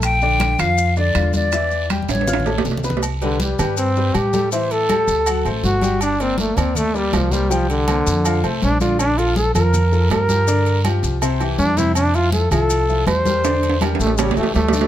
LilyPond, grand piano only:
\new Staff \with { instrumentName = "Grand piano" } { \time 4/4 \key c \mixolydian \tempo 4 = 161 <a a' a''>8 <d d' d''>4 <f f' f''>4 <d d' d''>8 <d f' f''>4 | <e e' e''>4 <g g' g''>4 <eis' eis'' eis'''>8 <a a' a''>4 <b b' b''>8 | r8 <g g' b'>4 <g g' b'>4 <g g' b'>4 <g g' a'>8 | <e e' e''>4 <g g' a'>4 <fis fis' fis''>8 <a a' c''>4 <g g' g''>8~ |
<g g' g''>8 <bes bes' d''>4 <bes bes' d''>4 <bes bes' d''>4 <bes bes' c''>8 | <g g' g''>4 <bes bes' c''>4 <f f' f''>8 <a a' c''>4 <d d' d''>8~ | <d d' d''>8 <f f' a'>4 <f f' bes'>4 <f f' a'>4 <f f' g'>8 | <d d' d''>4 <f f' g'>4 <c c' c''>8 <e e' g'>4 <c c' c''>8~ |
<c c' c''>8 <f e' f'>4 <f e' f'>4 <f e' f'>4 <g g' bes'>8 | <d d' d''>4 <g g' bes'>4 <cis cis' cis''>8 <e e' g'>4 <d d' d''>8 | }